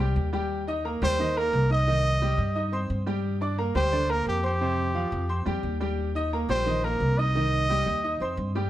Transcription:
Already playing: upright bass C2
0.00 grand piano G3 G4 G5
0.16 upright bass D#2
0.33 grand piano G3 G4 G5
0.67 grand piano D#4 D#5 D#6
0.85 grand piano A#3 A#4 A#5
1.02 upright bass D#2, grand piano G3 G4 G5, trumpet C5
1.19 grand piano D#3 D#4 D#5
1.37 grand piano A#3 A#4 A#5, trumpet A#4
1.53 upright bass C2
1.70 grand piano D#4 D#5 D#6, trumpet D#5
1.87 grand piano D#3 D#4 D#5
2.22 grand piano G3 G4 G5
2.38 upright bass G2
2.55 grand piano D#4 D#5 D#6
2.72 grand piano C4 C5 C6
2.90 upright bass G2
3.06 grand piano G3 G4 G5
3.41 grand piano D4 D5 D6
3.58 grand piano A#3 A#4 A#5
3.75 upright bass D2, grand piano G3 G4 G5, trumpet C5
3.92 grand piano D3 D4 D5
4.09 grand piano A#3 A#4 A#5, trumpet A#4
4.26 upright bass F2, trumpet G4
4.43 grand piano C4 C5 C6, trumpet G4
4.61 grand piano C3 C4 C5
4.95 grand piano F3 F4 F5
5.12 upright bass F2
5.29 grand piano C4 C5 C6
5.46 upright bass F2, grand piano G3 G4 G5
5.63 upright bass D#2
5.80 grand piano G3 G4 G5
6.15 grand piano D#4 D#5 D#6
6.33 grand piano A#3 A#4 A#5
6.49 upright bass A#1, grand piano G3 G4 G5, trumpet C5
6.66 grand piano D#3 D#4 D#5
6.84 grand piano A#3 A#4 A#5, trumpet A#4
7.00 upright bass C2
7.18 grand piano D#4 D#5 D#6, trumpet D#5
7.35 grand piano D#3 D#4 D#5
7.70 grand piano G3 G4 G5
7.86 upright bass D#2
8.04 grand piano D#4 D#5 D#6
8.20 upright bass F2, grand piano C4 C5 C6
8.37 upright bass G2
8.55 grand piano G3 G4 G5

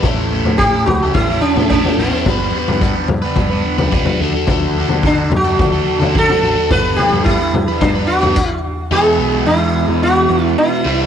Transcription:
0.02 picked electric bass A1, overdriven electric guitar A2 A3 C#4 E4 A4, kick, floor tom
0.31 overdriven electric guitar A3 C#4 E4 A4
0.45 picked electric bass A2, floor tom
0.58 overdriven electric guitar A2 A3 C#4 E4, sitar G4, kick
0.63 overdriven electric guitar A4
0.74 overdriven electric guitar E4 A4
0.78 overdriven electric guitar C#4
0.86 picked electric bass C#2, sitar F#4, muted overdriven electric guitar stroke, floor tom, mid tom
1.03 overdriven electric guitar C#4 E4 A4
1.14 picked electric bass A1, sitar E4, kick, floor tom
1.30 overdriven electric guitar C#4 E4 A4
1.41 sitar C#4
1.56 picked electric bass A2, overdriven electric guitar A4, floor tom
1.60 overdriven electric guitar C#4 E4
1.70 overdriven electric guitar A2 A3 C#4, sitar C#4, kick
1.75 overdriven electric guitar E4 A4
1.85 overdriven electric guitar E4 A4, floor tom
1.89 overdriven electric guitar C#4
1.97 picked electric bass A1, overdriven electric guitar A3 C#4, sitar B3
2.02 overdriven electric guitar E4 A4
2.13 overdriven electric guitar C#4 E4 A4
2.26 picked electric bass G1, overdriven electric guitar G3 B3 D4 B4, kick, floor tom
2.55 overdriven electric guitar G3 B3 D4 B4
2.68 picked electric bass G2, floor tom
2.81 overdriven electric guitar G3 B3 D4 B4, kick
2.95 overdriven electric guitar B3 D4 B4
3.08 picked electric bass G2, muted overdriven electric guitar stroke, floor tom, mid tom
3.22 overdriven electric guitar B3 D4 B4
3.36 picked electric bass G2, kick, floor tom
3.50 overdriven electric guitar B3 D4 B4
3.78 picked electric bass C#2, overdriven electric guitar B3 D4 B4, floor tom
3.92 overdriven electric guitar G3 B3 D4 B4, kick
4.05 overdriven electric guitar B3 D4 B4, floor tom
4.20 picked electric bass D2, overdriven electric guitar D3 D4 F#4 A4
4.34 overdriven electric guitar D4 F#4 A4
4.47 picked electric bass D2, overdriven electric guitar D3 D4 F#4, kick, floor tom
4.51 overdriven electric guitar A4
4.78 overdriven electric guitar D3 D4 F#4 A4
4.88 picked electric bass D3, floor tom
5.03 overdriven electric guitar D3 D4 F#4 A4, sitar D4, kick
5.18 overdriven electric guitar D4 F#4 A4
5.30 picked electric bass F#2, muted overdriven electric guitar stroke, floor tom, mid tom
5.36 sitar F#4
5.45 overdriven electric guitar D4 F#4 A4
5.59 picked electric bass D2, kick, floor tom
5.72 overdriven electric guitar D4 F#4 A4
5.99 picked electric bass D3, overdriven electric guitar F#4 A4, floor tom
6.04 overdriven electric guitar D4
6.14 overdriven electric guitar D3 D4 F#4, kick
6.18 overdriven electric guitar A4, sitar A4
6.29 overdriven electric guitar D4 F#4 A4, floor tom
6.41 picked electric bass A1, overdriven electric guitar D3 D4 F#4
6.46 overdriven electric guitar A4
6.56 overdriven electric guitar D4 F#4 A4
6.70 picked electric bass G1, overdriven electric guitar G3 B3 D4 B4, sitar B4, kick, floor tom
6.96 overdriven electric guitar G3 B3 D4, sitar G4, floor tom
7.01 overdriven electric guitar B4
7.12 picked electric bass G2, floor tom
7.24 overdriven electric guitar G3 D4, sitar E4, kick
7.29 overdriven electric guitar B3 B4
7.41 overdriven electric guitar B3 D4 B4
7.53 picked electric bass G2, muted overdriven electric guitar stroke, floor tom
7.68 overdriven electric guitar B3 D4 B4
7.81 picked electric bass G2, sitar D4, kick, floor tom
7.95 overdriven electric guitar B3 D4 B4
8.07 sitar F#4
8.21 picked electric bass G2, overdriven electric guitar B3 D4 B4, floor tom
8.36 kick, crash
8.48 sitar E4
8.91 picked electric bass E2, overdriven electric guitar E2 B2 E3 G#3 B3, sitar G#4
8.95 overdriven electric guitar E4
9.18 picked electric bass B1
9.46 picked electric bass E2, sitar E4
9.88 picked electric bass E2
10.03 sitar F#4
10.30 picked electric bass E2
10.43 sitar E4
10.58 sitar E4
10.84 picked electric bass C2, overdriven electric guitar C3 E3 G3 C4 E4

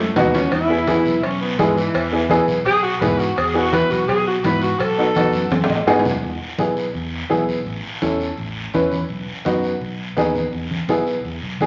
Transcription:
Already playing: saxophone section A3
0.16 fingered electric bass D#2, upright piano B3 D#4 F#4, cowbell, high conga, low conga, low timbale, short guiro
0.34 saxophone section C#4, low timbale, short guiro
0.52 fingered electric bass E2, saxophone section E4, cowbell, high conga, long guiro
0.69 upright piano B3 E4 G#4
0.87 upright piano B3 E4 G#4, cowbell, high conga, short guiro
1.06 fingered electric bass B1, short guiro
1.23 fingered electric bass B1, saxophone section C#4, cowbell, high conga, long guiro
1.41 saxophone section B3
1.59 fingered electric bass G#2, saxophone section G#3, upright piano B3 E4 G#4, cowbell, high conga, short guiro
1.76 saxophone section E3, short guiro
1.94 fingered electric bass E2, cowbell, high conga, long guiro
2.12 upright piano B3 E4 G#4
2.29 upright piano B3 E4 G#4, cowbell, high conga, short guiro
2.48 fingered electric bass B1, short guiro
2.66 fingered electric bass B1, saxophone section G#4, cowbell, high conga, long guiro
2.83 saxophone section F#4
3.00 fingered electric bass G#2, upright piano B3 E4 G#4, saxophone section B4, cowbell, high conga, low conga, short guiro
3.18 saxophone section F#4, short guiro
3.37 fingered electric bass E2, saxophone section G#4, cowbell, high conga, long guiro
3.54 upright piano B3 E4 G#4, saxophone section F#4
3.72 upright piano B3 E4 B4, saxophone section B4, cowbell, high conga, short guiro
3.91 fingered electric bass B1, saxophone section F#4, short guiro
4.08 fingered electric bass B1, saxophone section G#4, cowbell, high conga, long guiro
4.28 saxophone section F#4
4.44 fingered electric bass G#2, upright piano B3 E4 B4, saxophone section B4, cowbell, high conga, short guiro
4.62 saxophone section F#4, short guiro
4.79 fingered electric bass B1, saxophone section A4, cowbell, high conga, long guiro
4.98 upright piano B3 D#4 F#4
5.15 upright piano B3 D#4 F#4, cowbell, high conga, short guiro
5.33 fingered electric bass F#2, short guiro
5.50 fingered electric bass F#2, cowbell, high conga, high timbale, long guiro
5.64 high timbale
5.68 fingered electric bass A2, upright piano D#5, high conga
5.75 high timbale
5.86 fingered electric bass G#2, upright piano B3 D#4 G#4 F#5, cowbell, low timbale, short guiro
5.99 low timbale
6.04 fingered electric bass F#2, low conga, short guiro
6.11 low timbale
6.23 fingered electric bass E2, high conga, long guiro
6.58 fingered electric bass B1, upright piano B3 E4 G#4, high conga, short guiro
6.77 short guiro
6.94 fingered electric bass E2, high conga, long guiro
7.30 fingered electric bass B1, upright piano B3 E4 G#4, high conga, short guiro
7.49 short guiro
7.66 fingered electric bass A1, high conga, long guiro
8.02 fingered electric bass E2, upright piano C#4 E4 A4, high conga, short guiro
8.20 short guiro
8.38 fingered electric bass A1, high conga, long guiro
8.74 fingered electric bass E2, upright piano C#4 E4 B4, high conga, short guiro
8.92 high conga, short guiro
9.09 fingered electric bass B1, high conga, long guiro
9.45 fingered electric bass F#2, upright piano B3 D#4 F#4, high conga, short guiro
9.63 short guiro
9.81 fingered electric bass B1, high conga, long guiro
10.17 fingered electric bass D#2, upright piano B3 D#4 G#4, high conga, short guiro
10.35 high conga, short guiro
10.53 fingered electric bass E2, high conga, long guiro
10.71 high conga
10.88 fingered electric bass B1, upright piano B3 E4 G#4, high conga, short guiro
11.07 short guiro
11.25 fingered electric bass E2, high conga, long guiro
11.42 fingered electric bass B1
11.60 fingered electric bass C#2, upright piano B3 E4 G#4, high conga, short guiro

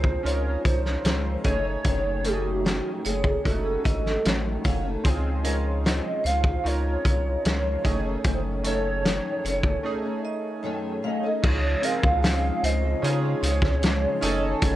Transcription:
Already playing: analog synth bass C#2, synth keys C4 D#4 F4 G#4 A#4, soft synth lead C5, vibraphone C5
0.04 nylon-string guitar F3 G#3 C4, kick
0.23 analog synth bass C#2, synth keys C#4 D#4 F4 A#4, soft synth lead C#5, closed hi-hat
0.46 nylon-string guitar F3 G#3
0.65 analog synth bass C2, soft synth lead C5, vibraphone C#5, kick, closed hi-hat
0.85 snare
1.04 analog synth bass C#2, nylon-string guitar C#3 F3 G#3 C4, snare, closed hi-hat
1.44 analog synth bass F#1, nylon-string guitar F#2 D#3 A3 C#4, synth keys A3 C#4 D#4 G#4, soft synth lead C#5, vibraphone D#5, kick, closed hi-hat
1.64 nylon-string guitar D#3 A3 C#4
1.84 analog synth bass F#1, nylon-string guitar F#2 D#3 A3 C#4, kick, closed hi-hat
2.24 nylon-string guitar F#2 D#3 A3 C#4, synth keys A3 C#4 D#4 G4, soft synth lead F#4, vibraphone A4, closed hi-hat
2.33 synth keys G#4
2.65 nylon-string guitar F#2 D#3 A3 C#4, snare, closed hi-hat
3.04 analog synth bass F#1, nylon-string guitar F#2 D#3 A3 C#4, soft synth lead G#4, vibraphone C#5, closed hi-hat
3.24 nylon-string guitar A3 C#4, kick
3.28 nylon-string guitar D#3
3.44 analog synth bass F#1, synth keys G#3 C#4 D#4 F#4, soft synth lead A4, kick, closed hi-hat
3.51 synth keys A3
3.64 nylon-string guitar D#3 A3 C#4
3.85 analog synth bass G#1, vibraphone D#5, kick, closed hi-hat
4.06 snare
4.25 analog synth bass A1, nylon-string guitar F#2 D#3 A3 C#4, snare, closed hi-hat
4.64 analog synth bass F#1, nylon-string guitar F#2 D#3 A3 C#4, vibraphone F5, kick, closed hi-hat
4.84 nylon-string guitar D#3 A3 C#4
5.04 analog synth bass C#2, nylon-string guitar C#3 F3 G#3 C4, synth keys C4 D#4 F4 G#4, kick, closed hi-hat
5.44 nylon-string guitar C#3 F3 G#3, synth keys C#4 D#4 F4 G#4, vibraphone A#4, soft synth lead C#5, closed hi-hat
5.84 nylon-string guitar C#3 F3 G#3 C4, soft synth lead D#5, snare, closed hi-hat
6.24 analog synth bass C#2, nylon-string guitar C#3 F3 G#3 C4, vibraphone C5, soft synth lead F5, closed hi-hat
6.44 nylon-string guitar F3 G#3 C4, kick
6.64 analog synth bass C#2, synth keys C#4 D#4 F4 A#4, soft synth lead C#5, closed hi-hat
6.86 nylon-string guitar F3 G#3
7.05 analog synth bass C2, vibraphone C#5, kick, closed hi-hat
7.45 analog synth bass C#2, nylon-string guitar C#3 F3 G#3, soft synth lead C#5, snare, closed hi-hat
7.84 analog synth bass F#1, nylon-string guitar F#2 D#3 A3 C#4, synth keys A3 C#4 D#4 G#4, vibraphone D#5, kick, closed hi-hat
8.04 nylon-string guitar D#3 A3 C#4
8.24 analog synth bass F#1, nylon-string guitar F#2 D#3 A3 C#4, soft synth lead C5, kick, closed hi-hat
8.64 nylon-string guitar F#2 D#3 A3 C#4, synth keys A3 C#4 D#4 A4, vibraphone A4, soft synth lead C#5, closed hi-hat
9.04 nylon-string guitar F#2 D#3 A3 C#4, snare, closed hi-hat
9.44 analog synth bass F#1, nylon-string guitar F#2 D#3 A3 C#4, vibraphone C#5, closed hi-hat
9.63 nylon-string guitar D#3 A3 C#4, kick
9.83 synth keys A3 C#4 D#4 G#4
10.03 nylon-string guitar D#3 A3 C#4
10.25 vibraphone D#5
10.63 nylon-string guitar F#2 D#3 A3 C#4
11.02 nylon-string guitar F#2 D#3 A3 C#4, soft synth lead D#5, vibraphone F5
11.23 nylon-string guitar D#3 A3 C#4
11.42 analog synth bass C#2, nylon-string guitar C#3 F3 G#3, analog synth pad C#3 G#3 F4, synth keys C#4 D#4 F4 G#4, soft synth lead C#5, kick, crash
11.82 synth keys C4 D#4 F4 G#4, vibraphone A#4, soft synth lead F5, closed hi-hat
12.02 analog synth bass C#2, nylon-string guitar F3 G#3 C4, kick
12.23 nylon-string guitar C#3 F3 G#3 C4, snare, closed hi-hat
12.63 analog synth bass C#2, vibraphone C5, soft synth lead D#5, closed hi-hat
12.81 nylon-string guitar F3 G#3 C4
13.02 analog synth bass C#3, synth keys C#4 D#4 F4 G#4, soft synth lead C#5, closed hi-hat
13.21 nylon-string guitar F3 G#3 C4
13.41 analog synth bass C#2, nylon-string guitar C#3 F3 G#3 C4, vibraphone C#5, closed hi-hat
13.62 nylon-string guitar F3 G#3 C4, kick, snare
13.82 nylon-string guitar C#3 F3 G#3, snare, closed hi-hat
14.21 analog synth bass F#1, nylon-string guitar F#2 D#3 A3 C#4, analog synth pad D#3 A3 C#4 F#4, synth keys C#4 D#4 G#4 A4, vibraphone D#5, closed hi-hat
14.41 nylon-string guitar D#3 A3 C#4
14.61 analog synth bass F#1, nylon-string guitar F#2 D#3 A3 C#4, soft synth lead C#5, kick, closed hi-hat

